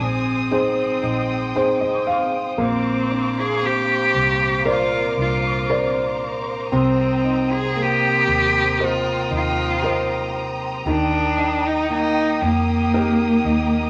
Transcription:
Already playing: G#2 G#3 C4 D#4 C5 G#5 D#6
0.00 A#1
0.04 C4
0.51 D#4 G#4 C5 G5
1.03 A#1 D#4
1.55 D#4 G#4 C5
1.81 D#5
2.07 F5
2.58 A#1 A#2 A#3 F5 A#5 D6
2.62 C4
3.11 D4
3.40 G#4
3.63 C4 G4
4.15 C2
4.65 A#4 C5 D5
4.70 F4
5.17 C2 D4
5.22 F4
5.70 A#4 C5 D5
6.72 C2 C3 C4 G5 D#6
7.25 D#4
7.53 G#4
7.76 A#3
7.82 G4
8.28 D#2
8.79 G4 A#4 C5 D#5
8.85 F4
9.31 D#2 D#4
9.36 F4
9.82 G4 A#4 C5 D#5
10.85 D#2 D#3 G4 G5 D#6
10.90 D4
11.38 D#4
11.67 D#4
11.90 A#3 D#4
12.42 F2 A#3
12.94 D#4 G4 A#4
13.44 D#2 D#4

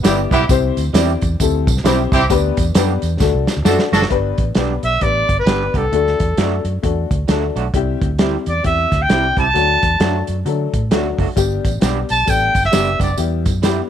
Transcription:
0.03 G1 G3 B3 E4 G4 D5, snare, closed hi-hat, tambourine
0.31 B1 G3 B3 E4 G4, kick, closed hi-hat, tambourine
0.49 C2 C4 E4 G4 C5, kick, closed hi-hat, tambourine
0.77 D2, closed hi-hat, tambourine
0.93 E2 G3 C4 E4 G4 D5, snare, closed hi-hat, tambourine
1.22 E2, kick, closed hi-hat, tambourine
1.40 D2 C4 E4 G4 A4, kick, closed hi-hat, tambourine
1.67 C2, kick, closed hi-hat, tambourine
1.77 snare
1.84 B1 G3 C4 E4 G4 C5, snare, closed hi-hat, tambourine
2.12 C2 G3 C4 E4 G4, kick, closed hi-hat, tambourine
2.29 D2 B3 D4 G4 B4, kick, closed hi-hat, tambourine
2.57 E2, kick, closed hi-hat, tambourine
2.75 F#2 G3 B3 D4 G4 B4, snare, closed hi-hat, tambourine
3.02 E2, closed hi-hat, tambourine
3.19 D2 A3 D4 F#4 A4, kick, snare, tambourine
3.34 C2
3.47 snare, tambourine
3.57 D2
3.64 F#2 A3 D4 F#4 A4, snare, tambourine
3.79 snare
3.92 F#1 A3 D4 F#4 A4, snare, tambourine
4.02 snare
4.09 G1 B3 D4 G4 B4, kick, closed hi-hat
4.38 A1, kick, closed hi-hat
4.55 B1 G3 B3 D4 G4 B4, snare, closed hi-hat
4.83 B1 E5, closed hi-hat
5.00 A1 B3 D4 G4 B4 D5, kick, closed hi-hat
5.29 G1, kick, closed hi-hat
5.40 B4
5.46 G1 G3 B3 D4 G4 B4, snare, closed hi-hat
5.74 C2 G3 B3 D4 G4 A4, kick, closed hi-hat
5.92 D2 A3 D4 F#4 A4, closed hi-hat
6.07 snare
6.20 E2, kick, closed hi-hat
6.37 F#2 F#3 A3 D4 F#4 A4, snare, closed hi-hat
6.64 F#2, closed hi-hat
6.83 E2 A3 D4 F#4 A4, kick, closed hi-hat
7.11 D2, kick, closed hi-hat
7.28 D2 F#3 A3 D4 F#4 A4, snare, closed hi-hat
7.56 B1 F#3 A3 D4 F#4, closed hi-hat
7.74 C2 G3 C4 E4 G4, kick, closed hi-hat
8.02 D2, kick, closed hi-hat
8.18 G3 C4 E4 G4, snare, closed hi-hat
8.46 E2 D5, closed hi-hat
8.63 E2 G3 C4 E4 G4 E5, kick, closed hi-hat
8.92 D2, kick, snare, closed hi-hat
9.02 G5
9.09 C2 G3 C4 E4 G4, snare, closed hi-hat
9.37 C2 G3 C4 E4 G4 A5, kick, closed hi-hat
9.54 D2 F#3 A3 D4 F#4, closed hi-hat
9.83 E2, kick, closed hi-hat
10.00 F#2 F#3 A3 D4 F#4, snare, closed hi-hat
10.27 F#2, closed hi-hat
10.45 D3 F#3 A3 D4 A4, closed hi-hat
10.73 A2, kick, closed hi-hat
10.91 D2 F#3 A3 D4 F#4, snare, closed hi-hat
11.18 F#1 F#3 A3 D4 F#4, kick, open hi-hat
11.36 G1 G3 B3 D4 G4, kick, closed hi-hat, tambourine
11.65 A1, kick, closed hi-hat, tambourine
11.80 B1 G3 B3 D4 G4, snare, closed hi-hat, tambourine
12.09 B1 A5, closed hi-hat, tambourine
12.25 A1 G3 B3 D4 A4, kick, closed hi-hat, tambourine
12.30 G5
12.55 G1, kick, closed hi-hat, tambourine
12.64 E5, snare
12.71 F#1 G3 B3 D4 G4, snare, closed hi-hat, tambourine
13.00 F#1 G3 B3 D4 G4 D5, kick, closed hi-hat, tambourine
13.17 E2 G3 B3 E4 G4, closed hi-hat, tambourine
13.46 F#2, kick, closed hi-hat, tambourine
13.62 G3 B3 E4 G4, snare, closed hi-hat, tambourine

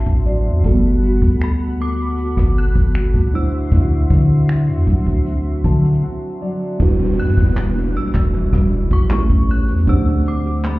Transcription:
Already playing: A2 F#3 C4 D4 E4 F#4 C5 E5 A5 C6, downlifter
0.07 A1, kick
0.26 F#3 D5, closed hi-hat
0.46 E2
0.63 G1 G3 A3 F#4 A4 F#5 B5, kick, closed hi-hat
0.71 B3
1.03 F#4, closed hi-hat
1.22 D2, kick
1.41 A4 B5, finger snap, closed hi-hat
1.80 B3 D6
2.18 F#4, closed hi-hat
2.37 G1, kick, cross-stick
2.56 B3 F#6, closed hi-hat
2.76 G1, kick
2.94 F#4, finger snap, closed hi-hat
3.14 D2, kick
3.32 D3 F#3 D4 E4 F#4 C5 E5 C6 E6, closed hi-hat
3.72 D2 D3 E4, kick, closed hi-hat
4.10 D3 C4, kick, closed hi-hat
4.48 E4, finger snap, closed hi-hat
4.69 E2
4.87 D2 F#3, kick
5.07 kick
5.26 C4, closed hi-hat
5.64 D3 F#3 A5, kick, closed hi-hat
5.74 closed hi-hat
5.84 closed hi-hat
5.93 closed hi-hat
6.03 C4 F#5
6.41 F#3 D5
6.78 E1 E3 G3 D4 E4 F#4 B4, kick, closed hi-hat, downlifter
6.99 G3
7.18 G2 D4 F#6, closed hi-hat
7.37 E1 F#4, kick
7.56 G3, clap, closed hi-hat
7.76 D4
7.95 B1 G3 E6, closed hi-hat
8.14 E1 D4, kick, clap
8.33 E3, closed hi-hat
8.53 E1 G3, kick, cross-stick
8.72 D4, closed hi-hat
8.91 A1 F#4 C#6, kick
9.10 A3 C#4 E4 G4 B4, clap
9.30 A1 G4, kick
9.49 C#4 F#6, closed hi-hat
9.58 closed hi-hat
9.68 E2 G4, closed hi-hat
9.78 closed hi-hat
9.86 D2 D3 A3 C4 D4 G4 C5 E6, kick, closed hi-hat
10.07 A3
10.25 C4 D6, closed hi-hat
10.45 G4
10.64 A3 B5, clap

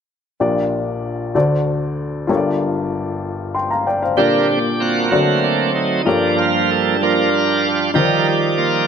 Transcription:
0.40 A#1 A#2 D4 F4 G4 A#4 D5
1.35 D2 D3 D4 F#4 A4 C5 D5
2.27 G1 G2 F4 G4 A4 A#4 C#5
2.37 D5
3.55 G5 C6
3.71 F5 A#5
3.87 D5 G5
4.02 C5 F5
4.15 A#2 D3 G3 A#3 C4 D4 F4 G4 A#4 D5
4.20 A#4
4.51 G4
4.80 A#3 C4 F#4
5.11 D3 F#3 A3 C4 D4 F#4 A4 C5 D5
5.44 D4
5.76 D#4
6.05 G2 F3 G3 A#3 D4 F4 G4 A4 A#4 C#5
6.16 D5
6.39 F4
6.71 A4
7.02 F3 A#3 D4 F4 A#4
7.93 D#3 F3 G3 D#4 F4 G4 A#4 D5
7.97 C5
8.04 D5
8.28 G4
8.58 A#3 F4

